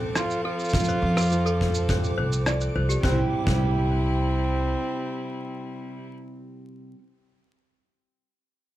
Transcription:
Already playing: F3 C4 F4 A4 D6
0.15 F4 C6, cross-stick, cabasa
0.30 cabasa
0.44 F4 A4
0.59 cabasa
0.64 cabasa
0.69 cabasa
0.73 F2 F3, kick, cabasa
0.79 cabasa
0.84 cabasa
0.88 C5, cabasa
1.02 F2 F4
1.17 C6, cross-stick, cabasa
1.20 cabasa
1.22 cabasa
1.25 cabasa
1.27 cabasa
1.29 C4, cabasa
1.32 F4 A4, cabasa
1.46 A4, cabasa
1.59 C4, kick
1.74 cabasa
1.89 C4 C5, kick, cabasa
2.04 cabasa
2.18 C2 C5
2.32 cabasa
2.46 D5, cross-stick, cabasa
2.61 cabasa
2.75 C2 F4 C5
2.89 G4, cabasa
3.00 C2 C3 G3 E4 C5, kick
3.04 G3 C4
3.11 E4 G4
3.44 C2 C3 C5, kick
3.48 G3 C4
3.55 E4 G4

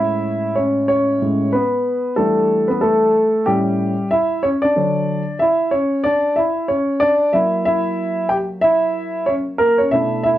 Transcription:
Already playing: A2 G#3 C#4 E4 E5
0.55 C#4 C#5
0.88 C#4 C#5
1.21 A2 G#3 C#4
1.53 B3 B4
2.16 E3 G3 A3 D4 A4
2.68 B3 B4
2.81 A3 A4
3.46 A2 G3 C#4 G4
4.11 E4 E5
4.43 C#4 C#5
4.62 D4 D5
4.76 D3 F#3 C#5
5.39 E4 E5
5.71 C#4 C#5
6.04 D4 D5
6.36 E4 E5
6.68 C#4 C#5
7.00 D4 D5
7.33 F#3 A#3 E4 E5
7.65 E4 E5
8.29 G4 G5
8.62 E4 E5
9.26 C#4 C#5
9.58 A#3 A#4
9.78 C#4 C#5
9.91 B2 A3 D4 E4 E5
10.23 E4 E5

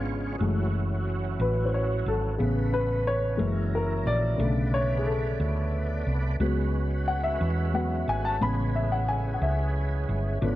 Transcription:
Already playing: G#1 C#3 G#3 B3 C#4 D4 F4 G#4 C#5
0.39 F#1 E3 F#3 G#3 A3 C#4 E4 F#4
1.40 A1 B4
1.66 C5
1.74 C#5
2.06 G#1 A4
2.38 A1 C#3 A3 B3 C#4 G#4 B4
2.74 B4
3.07 C#5
3.37 F#1 C#3 E3 F#3 G#3 A#3 E4 F#4 A#4 E5
3.75 A#4
4.06 A#1 D5
4.38 B1 C#3 D3 A3 B3 A4 B4 D5
4.74 C#5
4.98 G#4
5.06 A4
5.40 D2
6.07 C2
6.39 C#2 F#3 G#3 B3 C#4 F#4 G#4 B4 C#5
7.08 F#5
7.24 E5
7.41 E2
7.73 F#3 G#3 B3 F#5
8.08 G#1 G#5
8.25 A5
8.40 A1 C#3 G#3 B3 C#4 E4 G#4 B4 B5
8.75 E5
8.92 F#5
9.08 G#5
9.34 F#5
9.42 C#2 E5
10.09 G1
10.41 G#1 D3 F3 B3 C#4 D4 B4

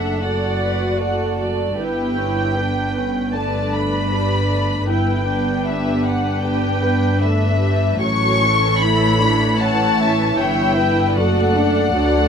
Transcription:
Already playing: F#1 F#2 A3 D4 A4 E5 F#5
0.21 F#4 A4 D5 F#5
0.62 B4
1.00 A3 A4 D5 F#5
1.39 D5
1.77 G1 G2 B3 E4 G4 B4 G5
2.18 C#4
2.56 B3 D4 B4
2.96 C#4
3.33 A3 D4 B4 D5 A5
3.73 B5
4.11 G3 B4 D5
4.51 A3
4.88 G1 G2 B3 E4 B4 G5
5.29 D4
5.66 G4 E5
6.03 F#5
6.42 B3 G4 B4 G5
6.80 B4
7.19 A3 B4 E5
7.61 G3
8.01 A1 A2 F#3 C#4 A4 C#5 C#6
8.42 E3
8.80 E4 C#5 B5
9.20 D4
9.59 C#4 C#5 F#5 A5
9.99 E5
10.37 G1 G2 E4 C#5 E5 G5
10.76 B4
11.14 F#1 F#2 A3 F#4 A4 D5 F#5
11.55 D4
11.94 D2 F#3 D4 A4

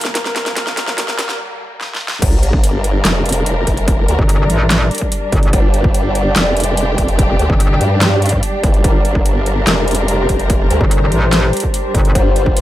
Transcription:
Already playing: G2 D3 A#3 G4 A#4 D5 A5, riser
0.01 snare, closed hi-hat
0.15 A#3 A#4, snare, closed hi-hat
0.25 snare
0.36 snare, closed hi-hat
0.46 snare, closed hi-hat
0.57 A#3 A#4, snare, closed hi-hat
0.67 snare
0.77 A#3 A#4, snare, closed hi-hat
0.88 snare
0.98 A#3 A#4, snare, closed hi-hat
1.08 snare
1.19 A#3 A#4, snare, closed hi-hat
1.29 snare
1.81 snare
1.95 snare
2.08 snare
2.22 G1 G3 D4 G4 A#4, kick, closed hi-hat, crash, sub drop
2.43 closed hi-hat
2.53 kick
2.60 D5, closed hi-hat
2.84 closed hi-hat
3.05 F1, snare, clap, closed hi-hat
3.26 closed hi-hat
3.29 closed hi-hat
3.32 closed hi-hat
3.46 closed hi-hat
3.67 F1, kick, closed hi-hat
3.77 closed hi-hat
3.88 kick, closed hi-hat
4.08 D2, closed hi-hat
4.19 G1, kick
4.29 closed hi-hat
4.50 A1, closed hi-hat
4.70 snare, clap, closed hi-hat
4.91 closed hi-hat
4.95 closed hi-hat
4.98 kick, closed hi-hat
5.12 closed hi-hat
5.32 G1, kick, closed hi-hat
5.43 closed hi-hat
5.53 G1 G4, kick, closed hi-hat
5.74 closed hi-hat
5.84 kick
5.94 closed hi-hat
6.15 closed hi-hat
6.36 F1, snare, clap, closed hi-hat
6.57 closed hi-hat
6.60 closed hi-hat
6.64 closed hi-hat
6.77 closed hi-hat
6.98 F1, kick, closed hi-hat
7.08 closed hi-hat
7.19 kick, closed hi-hat
7.39 D2, closed hi-hat
7.50 G1, kick
7.60 closed hi-hat
7.81 G2, closed hi-hat
8.01 snare, clap, closed hi-hat
8.22 closed hi-hat
8.26 closed hi-hat
8.29 kick, closed hi-hat
8.43 closed hi-hat
8.63 G1, kick, closed hi-hat
8.74 closed hi-hat
8.84 G1 A#4, kick, closed hi-hat
9.05 closed hi-hat
9.15 kick
9.22 C5, closed hi-hat
9.46 closed hi-hat
9.67 F1, snare, clap, closed hi-hat
9.88 closed hi-hat
9.91 closed hi-hat
9.95 closed hi-hat
10.08 closed hi-hat
10.29 F1, kick, closed hi-hat
10.39 closed hi-hat
10.50 kick, closed hi-hat
10.70 D2, closed hi-hat
10.81 G1, kick
10.91 closed hi-hat
11.12 A1, closed hi-hat
11.33 snare, clap, closed hi-hat
11.53 closed hi-hat
11.57 closed hi-hat
11.60 kick, closed hi-hat
11.74 closed hi-hat
11.94 G1, kick, closed hi-hat
12.05 closed hi-hat
12.15 G1 F4, kick, closed hi-hat
12.36 closed hi-hat
12.46 kick
12.57 closed hi-hat

